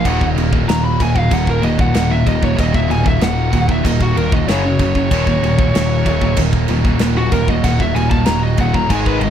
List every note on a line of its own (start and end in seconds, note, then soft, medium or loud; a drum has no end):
0.05 0.34 D#1 medium
0.05 0.98 D#2 medium
0.05 0.19 D#2 medium
0.05 0.98 A#2 medium
0.05 0.19 A#2 medium
0.05 0.99 D#3 loud
0.05 0.20 D#3 loud
0.05 1.01 F#3 loud
0.05 0.99 A#3 loud
0.05 0.99 D#4 loud
0.05 0.24 F#5 medium
0.05 kick medium
0.05 crash medium
0.21 0.37 D#2 medium
0.21 0.37 A#2 medium
0.21 kick medium
0.36 0.65 D#1 medium
0.36 0.52 D#2 medium
0.36 0.52 A#2 medium
0.36 crash medium
0.53 0.68 D#2 medium
0.53 0.68 A#2 medium
0.53 kick medium
0.68 0.97 D#1 medium
0.68 0.97 D#2 medium
0.68 0.97 A#2 medium
0.68 0.84 A#5 loud
0.68 snare loud
0.68 crash medium
0.84 1.00 B5 loud
1.00 1.28 D#1 medium
1.00 1.14 D#2 medium
1.00 2.56 D#2 medium
1.00 1.14 A#2 medium
1.00 2.56 A#2 medium
1.00 2.57 D#3 medium
1.00 2.59 F#3 medium
1.00 2.57 A#3 medium
1.00 2.56 D#4 medium
1.00 1.18 G#5 loud
1.00 kick medium
1.00 crash medium
1.16 1.30 D#2 medium
1.16 1.30 A#2 medium
1.16 1.34 F5 medium
1.16 kick medium
1.31 1.60 D#1 medium
1.31 1.60 D#2 medium
1.31 1.60 A#2 medium
1.31 1.48 F#5 loud
1.31 kick loud
1.31 crash medium
1.47 1.64 A#4 medium
1.47 kick medium
1.62 1.91 D#1 medium
1.62 1.78 D#2 medium
1.62 1.78 A#2 medium
1.62 1.79 D#5 loud
1.62 crash medium
1.79 1.93 D#2 medium
1.79 1.94 A#2 medium
1.79 1.95 F#5 medium
1.79 kick loud
1.94 2.23 D#1 medium
1.94 2.09 D#2 medium
1.94 2.09 A#2 medium
1.94 2.11 F#5 medium
1.94 snare loud
1.94 crash medium
2.10 2.25 D#2 medium
2.10 2.25 A#2 medium
2.10 2.26 E5 loud
2.26 2.55 D#1 medium
2.26 2.42 D#2 medium
2.26 2.42 A#2 medium
2.26 2.43 D#5 loud
2.26 kick medium
2.26 crash medium
2.43 2.57 D#2 medium
2.43 2.58 A#2 medium
2.43 2.59 C#5 medium
2.43 kick medium
2.57 2.87 D#1 medium
2.57 3.51 D#2 loud
2.57 2.73 D#2 medium
2.57 3.51 A#2 loud
2.57 2.74 A#2 medium
2.57 3.51 D#3 loud
2.57 3.53 F#3 loud
2.57 3.52 A#3 loud
2.57 3.51 D#4 loud
2.57 2.75 D#5 medium
2.57 kick medium
2.57 crash medium
2.74 2.90 D#2 medium
2.74 2.89 A#2 medium
2.74 2.90 E5 medium
2.74 kick medium
2.88 3.17 D#1 medium
2.88 3.05 D#2 medium
2.88 3.05 A#2 medium
2.88 3.06 G#5 loud
2.88 crash soft
3.06 3.22 D#2 medium
3.06 3.22 A#2 medium
3.06 3.22 E5 medium
3.06 kick medium
3.20 3.49 D#1 medium
3.20 3.51 D#2 medium
3.20 3.51 A#2 medium
3.20 3.67 F#5 loud
3.20 snare loud
3.20 crash medium
3.52 3.81 D#1 medium
3.52 3.69 D#2 medium
3.52 4.47 D#2 medium
3.52 3.69 A#2 medium
3.52 4.47 A#2 medium
3.52 4.47 D#3 medium
3.52 4.50 F#3 medium
3.52 4.46 A#3 medium
3.52 4.46 D#4 medium
3.52 kick medium
3.52 crash medium
3.69 3.84 D#2 medium
3.69 3.84 A#2 medium
3.69 3.85 E5 medium
3.69 kick medium
3.85 4.13 D#1 medium
3.85 4.13 D#2 medium
3.85 4.14 A#2 medium
3.85 4.01 D#5 medium
3.85 kick loud
3.85 crash medium
4.01 4.17 F#4 medium
4.01 kick medium
4.17 4.45 D#1 medium
4.17 4.32 D#2 medium
4.17 4.32 A#2 medium
4.17 4.32 A#4 medium
4.17 crash medium
4.32 4.48 D#2 medium
4.32 4.49 A#2 medium
4.32 4.50 D#5 medium
4.32 kick loud
4.47 4.76 F#1 medium
4.47 5.09 F#2 medium
4.47 4.62 F#2 medium
4.47 5.10 C#3 medium
4.47 4.63 C#3 medium
4.47 5.11 F#3 loud
4.47 4.63 F#3 loud
4.47 6.39 C#5 medium
4.47 snare loud
4.47 crash medium
4.65 4.80 F#2 medium
4.65 4.80 C#3 medium
4.79 5.08 F#1 medium
4.79 4.95 F#2 medium
4.79 4.95 C#3 medium
4.79 kick medium
4.79 crash medium
4.95 5.11 F#2 medium
4.95 5.11 C#3 medium
4.95 kick medium
5.10 5.40 D#1 loud
5.10 6.03 D#2 medium
5.10 5.25 D#2 medium
5.10 6.04 A#2 loud
5.10 5.25 A#2 medium
5.10 6.04 D#3 medium
5.10 5.25 D#3 medium
5.10 6.05 F#3 loud
5.10 6.05 A#3 loud
5.10 6.04 D#4 loud
5.10 kick medium
5.10 crash medium
5.27 5.42 D#2 medium
5.27 5.42 A#2 medium
5.27 kick medium
5.43 5.71 D#1 medium
5.43 5.58 D#2 medium
5.43 5.58 A#2 medium
5.43 crash medium
5.59 5.74 D#2 medium
5.59 5.74 A#2 medium
5.59 kick medium
5.75 6.03 D#1 medium
5.75 6.03 D#2 medium
5.75 6.03 A#2 medium
5.75 snare loud
5.75 crash medium
6.06 6.35 D#1 medium
6.06 6.21 D#2 medium
6.06 7.63 D#2 medium
6.06 6.21 A#2 medium
6.06 7.63 A#2 medium
6.06 7.63 D#3 medium
6.06 7.63 F#3 medium
6.06 7.62 A#3 medium
6.06 7.62 D#4 medium
6.06 kick medium
6.06 crash medium
6.21 6.37 D#2 medium
6.21 6.37 A#2 medium
6.21 kick loud
6.37 6.66 D#1 medium
6.37 6.66 D#2 medium
6.37 6.66 A#2 medium
6.37 kick loud
6.37 crash medium
6.53 kick medium
6.68 6.97 D#1 loud
6.68 6.85 D#2 medium
6.68 6.84 A#2 medium
6.68 crash medium
6.85 7.00 D#2 medium
6.85 7.00 A#2 medium
6.85 kick medium
6.99 7.29 D#1 medium
6.99 7.16 D#2 medium
6.99 7.16 A#2 medium
6.99 snare loud
6.99 crash medium
7.17 7.32 D#2 medium
7.17 7.31 A#2 medium
7.17 7.32 F#4 medium
7.32 7.61 D#1 medium
7.32 7.47 D#2 medium
7.32 7.47 A#2 medium
7.32 7.47 A#4 loud
7.32 kick medium
7.32 crash medium
7.48 7.62 D#2 medium
7.48 7.62 A#2 medium
7.48 7.64 D#5 medium
7.48 kick medium
7.64 7.92 D#1 medium
7.64 7.78 D#2 medium
7.64 8.57 D#2 loud
7.64 7.78 A#2 medium
7.64 8.58 A#2 medium
7.64 8.58 D#3 loud
7.64 8.58 F#3 loud
7.64 8.58 A#3 medium
7.64 8.57 D#4 loud
7.64 7.79 F#5 loud
7.64 kick medium
7.64 crash medium
7.79 7.94 D#2 medium
7.79 7.94 A#2 medium
7.79 7.96 E5 loud
7.79 kick medium
7.95 8.24 D#1 medium
7.95 8.09 D#2 medium
7.95 8.09 A#2 medium
7.95 8.10 G#5 loud
7.95 crash medium
8.10 8.25 D#2 medium
8.10 8.25 A#2 medium
8.10 8.26 A5 medium
8.10 kick loud
8.25 8.56 D#1 loud
8.25 8.55 D#2 medium
8.25 8.55 A#2 loud
8.25 8.42 A#5 loud
8.25 snare loud
8.25 crash medium
8.43 8.58 D#5 medium
8.58 8.87 D#1 medium
8.58 8.74 D#2 medium
8.58 8.90 D#2 medium
8.58 8.73 A#2 medium
8.58 8.90 A#2 medium
8.58 8.90 D#3 medium
8.58 8.89 F#3 medium
8.58 8.89 A#3 medium
8.58 8.88 D#4 medium
8.58 8.75 F#5 loud
8.58 kick medium
8.58 crash medium
8.74 8.91 D#2 medium
8.74 8.89 A#2 medium
8.74 8.90 A#5 loud
8.74 kick medium
8.90 9.19 G#1 loud
8.90 9.20 G#2 loud
8.90 9.30 G#2 medium
8.90 9.20 D#3 loud
8.90 9.30 D#3 loud
8.90 9.21 G#3 loud
8.90 9.06 G#5 medium
8.90 kick loud
8.90 crash medium
8.95 9.30 G#3 medium
9.06 9.21 B4 medium
9.06 kick medium
9.19 9.30 G#1 medium
9.19 9.30 G#2 medium
9.19 9.30 D#3 medium
9.19 9.30 D#5 loud
9.19 crash medium